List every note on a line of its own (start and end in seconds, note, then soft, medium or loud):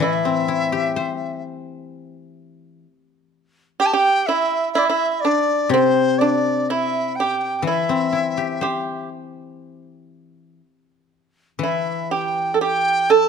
0.00 0.95 A2 soft
0.00 2.84 E3 soft
0.00 1.40 E4 medium
0.00 1.42 E5 medium
0.25 2.13 C4 soft
0.48 2.37 E4 soft
0.72 2.61 G4 soft
0.96 2.85 C5 soft
3.80 3.92 G4 medium
3.80 3.87 G5 medium
3.86 3.95 A5 medium
3.93 4.25 G4 medium
3.93 4.28 G5 medium
4.26 4.73 E4 medium
4.26 4.72 E5 medium
4.73 4.88 E4 medium
4.73 4.79 E5 medium
4.78 4.87 D5 medium
4.86 5.22 E4 medium
4.86 5.12 E5 medium
5.12 5.22 E5 soft
5.20 5.73 D5 medium
5.25 5.70 D4 medium
5.69 7.64 C3 soft
5.69 6.20 C5 medium
5.74 6.18 C4 medium
6.18 6.66 D4 medium
6.18 6.71 D5 medium
6.69 7.15 E4 medium
6.69 7.17 E5 medium
7.16 7.59 G5 medium
7.20 7.64 G4 medium
7.59 10.59 E3 soft
7.59 7.65 G5 soft
7.64 8.60 E4 medium
7.64 9.11 E5 medium
7.89 9.85 C4 soft
8.13 10.09 E4 soft
8.37 10.35 G4 soft
8.61 9.08 G4 medium
8.61 10.60 C5 soft
11.59 13.29 E3 soft
11.59 12.13 E5 medium
11.63 12.09 E4 soft
12.11 12.51 G4 medium
12.11 12.61 G5 medium
12.54 12.61 A4 soft
12.61 13.07 G4 medium
12.61 13.13 G5 medium
13.10 13.29 A4 medium
13.10 13.29 A5 medium